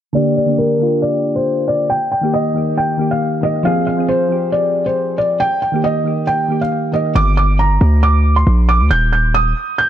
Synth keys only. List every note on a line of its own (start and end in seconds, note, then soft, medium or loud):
0.13 0.36 D3 loud
0.13 0.36 A#3 medium
0.13 0.37 G4 loud
0.46 0.69 D3 medium
0.46 0.70 A#3 medium
0.46 0.71 D4 medium
0.79 1.38 D3 medium
0.79 1.39 A#3 medium
0.79 1.40 F4 medium
2.21 2.44 D#3 medium
2.21 2.45 A#3 medium
2.21 2.46 G4 medium
2.54 2.84 D#3 medium
2.54 2.85 A#3 medium
2.54 2.86 G4 medium
2.97 3.28 D#3 medium
2.97 3.29 A#3 medium
2.97 3.29 G4 medium
3.41 3.57 D#3 medium
3.41 3.58 A#3 medium
3.41 3.59 G4 medium
3.63 3.86 F3 loud
3.63 3.87 C4 medium
3.63 3.88 G#4 loud
3.97 4.19 F3 medium
3.97 4.20 C4 medium
3.97 4.21 G#4 medium
4.29 4.88 F3 medium
4.29 4.89 C4 medium
4.29 4.90 G4 medium
5.72 5.95 D#3 medium
5.72 5.95 A#3 medium
5.72 5.96 G4 medium
6.04 6.34 D#3 medium
6.04 6.35 A#3 medium
6.04 6.36 G4 medium
6.48 6.78 D#3 medium
6.48 6.79 A#3 medium
6.48 6.80 G4 medium
6.92 7.08 D#3 medium
6.92 7.08 A#3 medium
6.92 7.09 G4 medium